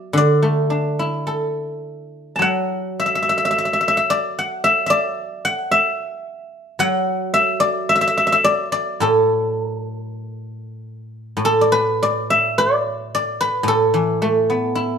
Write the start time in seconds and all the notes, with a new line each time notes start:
Already playing: F#3 D5 E5
0.13 D3
0.17 D5
0.42 A3
0.70 D4
0.99 E4
1.27 A4
2.36 F#3 A5
2.42 F#5
3.00 E5
3.06 E5
3.15 E5
3.22 E5
3.29 E5
3.38 E5
3.45 E5
3.51 E5
3.58 E5
3.65 E5
3.73 E5
3.81 E5
3.88 E5
3.97 E5
4.10 D5
4.39 F#5
4.64 E5
4.86 D5 E5
5.45 F#5
5.71 E5
6.79 F#3 F#5
7.34 E5
7.60 D5
7.89 E5
7.95 E5
8.01 E5
8.07 E5
8.17 E5
8.27 E5
8.32 E5
8.44 D5
8.72 D5
9.00 A2 A4
9.64 A#4
9.81 A4
9.99 A#4
10.16 A4
11.37 A2
11.45 A4
11.61 D5
11.72 B4
12.03 D5
12.30 E5
12.58 D5
13.15 D5
13.41 B4
13.63 A2
13.68 A4
13.94 E3
14.22 A3
14.50 B3
14.75 E4